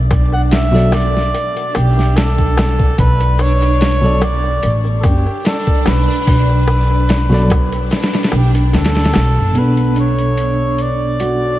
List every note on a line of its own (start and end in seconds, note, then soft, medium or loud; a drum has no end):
0.00 1.31 B1 loud
0.00 9.55 D4 medium
0.11 kick medium
0.11 closed hi-hat medium
0.11 darbuka tek medium
0.32 0.42 F#5 loud
0.32 darbuka tek soft
0.51 0.95 E5 loud
0.51 snare loud
0.51 closed hi-hat medium
0.51 darbuka tek soft
0.72 0.92 B2 medium
0.72 0.92 F#3 medium
0.72 0.93 A4 medium
0.72 snare soft
0.76 0.94 D5 loud
0.92 1.77 D5 loud
0.92 snare soft
0.92 closed hi-hat medium
0.92 darbuka tek loud
1.14 snare soft
1.14 darbuka tek soft
1.34 closed hi-hat medium
1.34 darbuka tek soft
1.56 closed hi-hat soft
1.56 darbuka tek soft
1.75 2.95 B1 medium
1.75 2.18 G4 loud
1.75 closed hi-hat medium
1.75 darbuka tek medium
1.97 snare soft
1.97 darbuka tek soft
2.16 2.99 A4 loud
2.16 snare loud
2.16 closed hi-hat medium
2.16 darbuka tek medium
2.38 kick medium
2.38 darbuka tek soft
2.57 snare loud
2.57 closed hi-hat medium
2.57 darbuka tek loud
2.79 kick medium
2.79 darbuka tek soft
2.98 4.59 B1 loud
2.98 3.42 B4 loud
2.98 kick loud
2.98 closed hi-hat medium
2.98 darbuka tek soft
3.20 closed hi-hat soft
3.20 darbuka tek soft
3.39 4.24 C#5 loud
3.39 closed hi-hat medium
3.39 darbuka tek medium
3.62 closed hi-hat soft
3.62 darbuka tek soft
3.81 snare loud
3.81 closed hi-hat medium
3.81 darbuka tek soft
4.01 4.21 B2 medium
4.01 4.22 F#3 medium
4.01 4.22 A4 medium
4.06 4.23 D5 loud
4.22 4.79 D5 loud
4.22 closed hi-hat medium
4.22 darbuka tek medium
4.44 darbuka tek soft
4.63 5.00 A1 medium
4.63 closed hi-hat medium
4.63 darbuka tek soft
4.85 darbuka tek soft
5.00 5.24 F#1 medium
5.00 5.07 A4 medium
5.00 kick medium
5.00 closed hi-hat medium
5.00 darbuka tek medium
5.06 5.46 G4 medium
5.26 darbuka tek soft
5.45 5.89 A4 loud
5.45 snare loud
5.45 closed hi-hat medium
5.45 darbuka tek soft
5.67 kick loud
5.67 darbuka tek soft
5.86 6.06 B1 medium
5.86 8.34 B4 loud
5.86 snare loud
5.86 closed hi-hat medium
5.86 darbuka tek medium
6.08 darbuka tek soft
6.27 7.88 B1 loud
6.27 kick loud
6.27 open hi-hat medium
6.27 darbuka tek medium
6.49 darbuka tek soft
6.68 darbuka tek medium
6.90 darbuka tek soft
7.09 snare loud
7.09 closed hi-hat loud
7.09 darbuka tek medium
7.29 7.49 B2 loud
7.29 7.50 F#3 medium
7.29 7.51 A4 medium
7.29 snare soft
7.34 7.51 D5 loud
7.50 kick loud
7.50 closed hi-hat medium
7.50 darbuka tek loud
7.73 closed hi-hat soft
7.73 darbuka tek soft
7.91 snare medium
7.91 closed hi-hat medium
7.91 darbuka tek medium
8.02 snare medium
8.02 closed hi-hat medium
8.13 snare medium
8.13 closed hi-hat medium
8.13 darbuka tek soft
8.23 snare loud
8.23 closed hi-hat medium
8.32 8.73 B1 loud
8.32 closed hi-hat soft
8.32 darbuka tek medium
8.36 8.52 G4 medium
8.55 closed hi-hat medium
8.55 darbuka tek soft
8.73 9.10 D2 loud
8.73 9.60 A4 loud
8.73 snare medium
8.73 closed hi-hat medium
8.73 darbuka tek medium
8.84 snare medium
8.84 closed hi-hat medium
8.95 snare medium
8.95 closed hi-hat medium
8.95 darbuka tek soft
9.04 snare medium
9.04 closed hi-hat medium
9.13 9.35 B1 loud
9.13 snare loud
9.13 closed hi-hat medium
9.13 darbuka tek medium
9.36 9.54 F#1 loud
9.36 darbuka tek soft
9.52 11.59 B2 medium
9.52 11.59 B3 medium
9.52 9.93 B3 medium
9.52 closed hi-hat medium
9.56 11.59 B1 medium
9.56 11.59 D4 medium
9.56 11.59 A4 medium
9.56 9.98 B4 medium
9.61 11.59 D4 medium
9.77 closed hi-hat soft
9.96 11.16 D4 medium
9.96 closed hi-hat medium
10.00 10.83 C#5 loud
10.19 closed hi-hat soft
10.37 closed hi-hat medium
10.78 11.59 D5 loud
10.78 closed hi-hat medium
11.20 11.59 F#4 medium
11.20 closed hi-hat medium